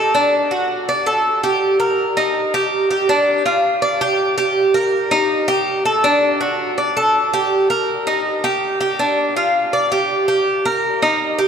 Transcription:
cuban tres
Already playing: A4
0.15 D4
0.51 F#4
0.89 D5
1.06 A4
1.44 G4
1.80 A#4
2.17 D#4
2.54 G4
2.91 G4
3.09 D4
3.46 F4
3.82 D5
4.01 G4
4.38 G4
4.74 A#4
5.11 D#4
5.48 G4
5.85 A4
6.04 D4
6.41 F#4
6.78 D5
6.97 A4
7.33 G4
7.70 A#4
8.07 D#4
8.44 G4
8.80 G4
8.99 D4
9.37 F4
9.73 D5
9.92 G4
10.28 G4
10.65 A#4
11.02 D#4
11.39 G4

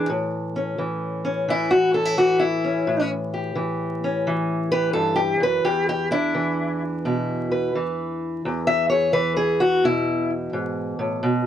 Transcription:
steel-string acoustic guitar
Already playing: E3
0.10 A2
0.56 C#4
0.78 E3
1.25 C#4
1.48 E3 E4
1.71 F#4
1.93 C#4 A4
2.05 E4
2.17 E3 F#4
2.39 E4
2.64 C#4
2.87 A2
3.34 G4
3.55 E3
4.04 C#4
4.27 E3
4.71 G4 B4
4.93 G2 A4
5.16 G4
5.40 F#2 B4
5.64 E2 G4
5.89 G4
6.11 D4 E4
6.35 E3
7.05 B2 E4
7.51 B4
7.75 E3
8.45 E2
8.67 E5
8.90 G#4 C#5
9.13 E3 B4
9.37 G#4
9.60 F#4
9.84 B2 E4
10.53 G#2
10.99 A2
11.23 B2

